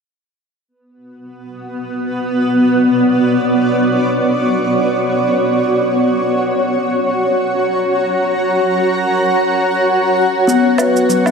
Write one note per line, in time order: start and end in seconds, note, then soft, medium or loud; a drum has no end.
0.68 5.58 B3 medium
0.89 11.31 F#4 medium
2.14 5.58 D5 medium
2.22 11.31 C#5 medium
7.01 11.31 F#5 medium
7.20 10.48 A#5 medium
10.47 11.31 B3 medium
10.47 10.64 B3 medium
10.47 shaker soft
10.78 11.07 B4 medium
10.78 low woodblock medium
10.78 shaker medium
10.96 shaker soft
11.09 11.25 F#3 medium
11.09 shaker soft
11.26 11.31 B3 medium
11.26 low woodblock medium
11.26 shaker soft